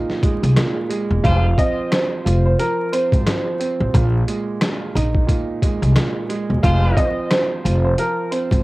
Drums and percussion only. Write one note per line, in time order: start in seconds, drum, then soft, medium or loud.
0.10 snare soft
0.23 kick loud
0.23 closed hi-hat medium
0.44 closed hi-hat medium
0.57 cross-stick medium
0.57 snare loud
0.57 closed hi-hat medium
0.91 closed hi-hat medium
1.24 kick loud
1.24 closed hi-hat medium
1.58 kick loud
1.58 closed hi-hat medium
1.92 cross-stick medium
1.92 snare loud
1.92 closed hi-hat loud
2.27 closed hi-hat medium
2.59 closed hi-hat medium
2.93 closed hi-hat medium
3.12 kick medium
3.12 closed hi-hat medium
3.26 cross-stick medium
3.26 snare loud
3.26 closed hi-hat medium
3.60 closed hi-hat medium
3.94 kick loud
3.94 closed hi-hat medium
4.28 closed hi-hat medium
4.61 cross-stick medium
4.61 snare loud
4.61 closed hi-hat loud
4.97 closed hi-hat medium
5.15 kick medium
5.29 kick medium
5.29 closed hi-hat medium
5.62 kick medium
5.62 closed hi-hat medium
5.83 closed hi-hat medium
5.96 cross-stick medium
5.96 snare loud
5.96 closed hi-hat medium
6.30 closed hi-hat medium
6.63 kick loud
6.63 closed hi-hat medium
6.97 kick loud
6.97 closed hi-hat medium
7.31 cross-stick medium
7.31 snare loud
7.31 closed hi-hat loud
7.66 closed hi-hat medium
7.98 closed hi-hat medium
8.32 closed hi-hat medium
8.51 kick medium
8.51 closed hi-hat medium